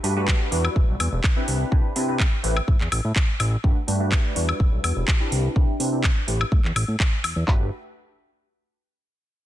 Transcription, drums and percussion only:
0.04 open hi-hat loud
0.28 kick loud
0.28 clap loud
0.52 open hi-hat medium
0.65 high woodblock medium
0.76 kick loud
1.00 open hi-hat loud
1.00 high woodblock medium
1.24 kick loud
1.24 clap loud
1.48 open hi-hat medium
1.72 kick loud
1.96 open hi-hat loud
2.20 kick loud
2.20 clap loud
2.44 open hi-hat medium
2.57 high woodblock medium
2.68 kick loud
2.81 clap soft
2.92 open hi-hat loud
2.92 high woodblock medium
3.16 kick loud
3.16 clap loud
3.40 open hi-hat medium
3.40 high woodblock medium
3.64 kick loud
3.88 open hi-hat loud
4.12 kick loud
4.12 clap loud
4.36 open hi-hat medium
4.49 high woodblock medium
4.60 kick loud
4.84 open hi-hat loud
4.84 high woodblock medium
5.08 kick loud
5.08 clap loud
5.32 open hi-hat medium
5.56 kick loud
5.80 open hi-hat loud
6.04 kick loud
6.04 clap loud
6.28 open hi-hat medium
6.41 high woodblock medium
6.52 kick loud
6.65 clap soft
6.76 open hi-hat loud
6.76 high woodblock medium
7.00 kick loud
7.00 clap loud
7.24 open hi-hat medium
7.24 high woodblock medium
7.48 kick loud
7.48 clap medium

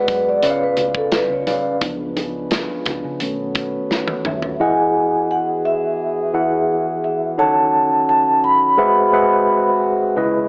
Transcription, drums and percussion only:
0.08 kick medium
0.08 closed hi-hat medium
0.43 closed hi-hat medium
0.77 closed hi-hat medium
0.77 low conga medium
0.95 kick loud
1.12 snare loud
1.12 closed hi-hat medium
1.12 high conga medium
1.47 closed hi-hat medium
1.47 high conga medium
1.81 kick loud
1.81 closed hi-hat medium
1.81 muted conga medium
2.17 closed hi-hat medium
2.17 muted conga medium
2.51 snare loud
2.51 closed hi-hat loud
2.51 high conga medium
2.86 kick medium
2.86 snare soft
2.86 closed hi-hat medium
2.86 low conga medium
3.20 closed hi-hat medium
3.55 kick medium
3.55 closed hi-hat medium
3.91 snare medium
3.91 high conga medium
4.08 high tom medium
4.25 mid tom medium
4.25 high conga medium
4.42 floor tom medium

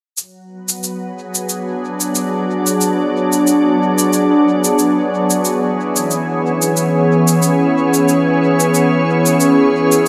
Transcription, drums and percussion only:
0.17 cabasa soft
0.69 cabasa soft
0.83 cabasa soft
1.35 cabasa soft
1.49 cabasa soft
2.01 cabasa soft
2.15 cabasa soft
2.67 cabasa soft
2.81 cabasa soft
3.32 cabasa soft
3.47 cabasa soft
3.98 cabasa soft
4.13 cabasa soft
4.64 cabasa soft
4.79 cabasa soft
5.30 cabasa soft
5.45 cabasa soft
5.96 cabasa soft
6.11 cabasa soft
6.62 cabasa soft
6.77 cabasa soft
7.28 cabasa soft
7.42 cabasa soft
7.94 cabasa soft
8.08 cabasa soft
8.60 cabasa soft
8.74 cabasa soft
9.26 cabasa soft
9.40 cabasa soft
9.92 cabasa soft

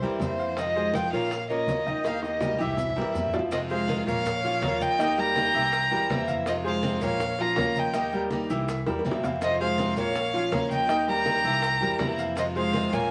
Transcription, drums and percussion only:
0.02 high conga soft
0.02 maracas soft
0.20 high bongo soft
0.20 low bongo medium
0.20 high conga medium
0.20 maracas medium
0.40 maracas soft
0.57 high bongo medium
0.57 high conga soft
0.57 maracas medium
0.75 high bongo soft
0.75 high conga soft
0.75 maracas soft
0.94 high bongo medium
0.94 high conga medium
0.94 maracas medium
1.12 high bongo soft
1.12 high conga soft
1.12 maracas soft
1.31 high bongo medium
1.31 high conga soft
1.31 maracas medium
1.49 high conga soft
1.49 maracas soft
1.67 high bongo soft
1.67 low bongo medium
1.67 high conga medium
1.67 maracas medium
1.86 high conga medium
1.86 maracas soft
2.05 high bongo medium
2.05 high conga soft
2.05 maracas medium
2.23 high bongo medium
2.23 high conga soft
2.23 maracas soft
2.41 low bongo medium
2.41 high conga medium
2.41 maracas medium
2.54 high conga medium
2.60 maracas soft
2.65 low conga medium
2.77 low bongo medium
2.77 low conga medium
2.77 maracas medium
2.90 low conga medium
2.97 low bongo medium
2.97 maracas soft
3.02 low conga medium
3.14 low bongo medium
3.14 maracas medium
3.27 low conga medium
3.33 low bongo medium
3.33 maracas soft
3.39 low conga medium
3.51 high bongo medium
3.51 high conga soft
3.51 maracas medium
3.70 high bongo soft
3.70 high conga soft
3.70 maracas soft
3.89 high bongo medium
3.89 high conga medium
3.89 maracas soft
4.07 high conga soft
4.07 low conga medium
4.07 maracas medium
4.26 high bongo medium
4.26 high conga soft
4.26 low conga medium
4.26 maracas medium
4.43 high bongo soft
4.43 high conga soft
4.43 maracas soft
4.62 high bongo medium
4.62 low bongo medium
4.62 high conga medium
4.62 maracas soft
4.80 high conga medium
4.80 maracas medium
4.99 high bongo medium
4.99 high conga soft
4.99 maracas medium
5.17 high conga soft
5.17 maracas soft
5.36 high bongo medium
5.36 high conga loud
5.36 maracas soft
5.55 high conga soft
5.55 maracas medium
5.73 high bongo medium
5.73 high conga soft
5.73 maracas medium
5.91 high bongo soft
5.91 high conga soft
5.91 maracas soft
6.10 high bongo medium
6.10 low bongo medium
6.10 high conga medium
6.10 maracas soft
6.28 high conga medium
6.28 maracas medium
6.46 high bongo medium
6.46 maracas medium
6.65 high bongo soft
6.65 high conga soft
6.65 maracas soft
6.83 high bongo medium
6.83 high conga medium
6.83 maracas soft
7.01 high bongo soft
7.01 high conga soft
7.01 low conga medium
7.01 maracas medium
7.19 high bongo medium
7.19 high conga soft
7.19 low conga medium
7.19 maracas medium
7.38 high bongo soft
7.38 high conga soft
7.38 maracas soft
7.56 high bongo medium
7.56 low bongo medium
7.56 high conga medium
7.56 maracas soft
7.75 high conga medium
7.75 maracas medium
7.94 high bongo medium
7.94 high conga soft
7.94 maracas medium
8.12 high bongo soft
8.12 high conga soft
8.12 maracas soft
8.30 high bongo medium
8.30 high conga medium
8.30 maracas soft
8.49 high bongo soft
8.49 high conga soft
8.49 maracas medium
8.68 high bongo medium
8.68 maracas medium
8.86 high bongo medium
8.86 high conga soft
8.86 maracas soft
8.99 high bongo medium
9.05 high conga medium
9.05 maracas soft
9.11 low bongo medium
9.23 low bongo loud
9.23 high conga medium
9.23 maracas medium
9.42 high bongo medium
9.42 high conga soft
9.42 maracas medium
9.60 high bongo soft
9.60 high conga soft
9.60 maracas soft
9.78 high bongo medium
9.78 high conga loud
9.78 maracas soft
9.96 high conga soft
9.96 low conga medium
9.96 maracas medium
10.15 high bongo medium
10.15 high conga soft
10.15 maracas medium
10.34 high bongo soft
10.34 high conga soft
10.34 maracas soft
10.52 high bongo medium
10.52 low bongo medium
10.52 high conga medium
10.52 maracas soft
10.71 high conga medium
10.71 maracas medium
10.89 high bongo medium
10.89 high conga soft
10.89 maracas medium
11.07 high bongo soft
11.07 high conga soft
11.07 maracas soft
11.26 high bongo medium
11.26 high conga loud
11.26 maracas soft
11.44 high bongo soft
11.44 maracas medium
11.62 high bongo medium
11.62 high conga soft
11.62 maracas medium
11.81 high bongo soft
11.81 high conga soft
11.81 maracas soft
11.99 high bongo medium
11.99 low bongo medium
11.99 high conga medium
11.99 maracas soft
12.18 maracas medium
12.37 high bongo medium
12.37 high conga soft
12.37 maracas loud
12.55 high bongo soft
12.55 high conga soft
12.55 maracas soft
12.73 high bongo medium
12.73 high conga medium
12.73 maracas soft
12.92 high conga soft
12.92 low conga medium
12.92 maracas medium

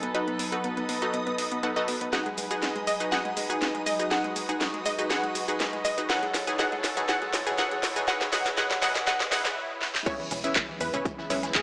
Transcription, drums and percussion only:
0.03 closed hi-hat soft
0.15 closed hi-hat soft
0.28 closed hi-hat soft
0.39 open hi-hat loud
0.52 closed hi-hat soft
0.64 closed hi-hat soft
0.77 closed hi-hat soft
0.89 open hi-hat medium
1.02 closed hi-hat soft
1.14 closed hi-hat soft
1.27 closed hi-hat soft
1.38 open hi-hat loud
1.52 closed hi-hat soft
1.63 closed hi-hat soft
1.76 closed hi-hat soft
1.88 open hi-hat medium
2.01 closed hi-hat soft
2.13 snare soft
2.13 closed hi-hat soft
2.13 shaker soft
2.26 closed hi-hat soft
2.38 open hi-hat loud
2.38 shaker medium
2.51 closed hi-hat soft
2.51 shaker soft
2.63 snare soft
2.63 closed hi-hat soft
2.63 shaker soft
2.76 closed hi-hat soft
2.87 open hi-hat medium
2.87 shaker medium
3.00 closed hi-hat soft
3.00 shaker soft
3.12 snare soft
3.12 closed hi-hat soft
3.12 shaker soft
3.25 closed hi-hat soft
3.37 open hi-hat loud
3.37 shaker medium
3.50 closed hi-hat soft
3.50 shaker soft
3.62 snare medium
3.62 closed hi-hat soft
3.62 shaker soft
3.75 closed hi-hat soft
3.86 open hi-hat medium
3.86 shaker medium
4.00 closed hi-hat soft
4.00 shaker soft
4.11 snare medium
4.11 closed hi-hat medium
4.11 shaker soft
4.24 closed hi-hat soft
4.36 open hi-hat loud
4.36 shaker medium
4.49 closed hi-hat medium
4.49 shaker soft
4.61 snare medium
4.61 closed hi-hat medium
4.61 shaker soft
4.74 closed hi-hat soft
4.86 open hi-hat medium
4.86 shaker medium
4.99 closed hi-hat medium
4.99 shaker soft
5.10 snare medium
5.10 closed hi-hat medium
5.10 shaker soft
5.24 closed hi-hat soft
5.35 open hi-hat loud
5.35 shaker medium
5.48 closed hi-hat medium
5.48 shaker soft
5.60 snare medium
5.60 closed hi-hat medium
5.60 shaker soft
5.73 closed hi-hat soft
5.85 open hi-hat medium
5.85 shaker medium
5.98 closed hi-hat medium
5.98 shaker soft
6.10 snare medium
6.10 closed hi-hat medium
6.10 shaker soft
6.23 closed hi-hat soft
6.34 snare medium
6.34 open hi-hat loud
6.34 shaker medium
6.47 closed hi-hat medium
6.47 shaker soft
6.59 snare medium
6.59 closed hi-hat medium
6.59 shaker soft
6.72 closed hi-hat soft
6.84 snare medium
6.84 open hi-hat medium
6.84 shaker medium
6.97 closed hi-hat medium
6.97 shaker soft
7.09 snare medium
7.09 closed hi-hat medium
7.09 shaker soft
7.22 closed hi-hat soft
7.33 snare medium
7.33 open hi-hat loud
7.33 shaker medium
7.47 closed hi-hat medium
7.47 shaker soft
7.58 snare medium
7.58 closed hi-hat medium
7.58 shaker soft
7.71 closed hi-hat soft
7.83 snare medium
7.83 open hi-hat medium
7.83 shaker medium
7.96 closed hi-hat medium
7.96 shaker soft
8.08 snare medium
8.08 closed hi-hat medium
8.08 shaker soft
8.21 snare medium
8.21 closed hi-hat soft
8.33 snare medium
8.33 open hi-hat loud
8.33 shaker medium
8.46 snare medium
8.46 closed hi-hat medium
8.46 shaker soft
8.58 snare loud
8.58 closed hi-hat medium
8.58 shaker soft
8.71 snare medium
8.71 closed hi-hat soft
8.82 snare loud
8.82 open hi-hat medium
8.82 shaker medium
8.95 snare medium
8.95 closed hi-hat medium
8.95 shaker soft
9.07 snare loud
9.07 closed hi-hat medium
9.07 shaker soft
9.20 snare medium
9.20 closed hi-hat soft
9.32 snare loud
9.32 open hi-hat loud
9.32 shaker medium
9.45 snare medium
9.45 closed hi-hat medium
9.45 shaker soft
9.82 snare medium
9.95 snare medium
10.06 kick loud
10.06 closed hi-hat medium
10.06 crash loud
10.06 high woodblock soft
10.06 shaker soft
10.19 closed hi-hat soft
10.31 closed hi-hat medium
10.31 open hi-hat loud
10.31 high woodblock medium
10.31 shaker medium
10.44 closed hi-hat medium
10.44 shaker soft
10.56 kick loud
10.56 cross-stick medium
10.56 snare loud
10.56 clap loud
10.56 closed hi-hat medium
10.56 high woodblock soft
10.56 shaker soft
10.69 high conga loud
10.81 closed hi-hat medium
10.81 open hi-hat medium
10.81 high woodblock medium
10.81 shaker medium
10.94 closed hi-hat medium
10.94 low conga medium
10.94 shaker soft
11.05 kick loud
11.05 closed hi-hat medium
11.05 shaker soft
11.18 snare soft
11.18 high woodblock soft
11.30 closed hi-hat medium
11.30 open hi-hat loud
11.30 high conga medium
11.30 shaker medium
11.43 snare medium
11.43 closed hi-hat medium
11.43 high woodblock medium
11.43 shaker soft
11.55 kick loud
11.55 snare loud
11.55 clap loud
11.55 closed hi-hat loud
11.55 closed hi-hat medium
11.55 shaker soft

